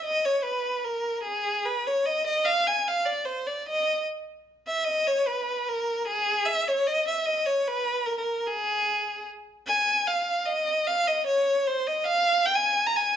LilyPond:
\new Staff \with { instrumentName = "Violin" } { \time 3/4 \key dis \phrygian \tempo 4 = 150 dis''8 cis''8 b'4 ais'4 | gis'4 b'8 cis''8 dis''8 dis''8 | eis''8 gis''8 eis''8 d''8 bis'8 d''8 | dis''4 r4. e''8 |
dis''8 cis''8 b'4 ais'4 | gis'4 e''8 cis''8 dis''8 e''8 | dis''8 cis''8 b'4 ais'16 ais'8. | gis'2 r4 |
\key aes \major aes''4 f''4 ees''4 | f''8 ees''8 des''4 c''8 ees''8 | f''4 g''16 aes''8. bes''16 aes''8. | }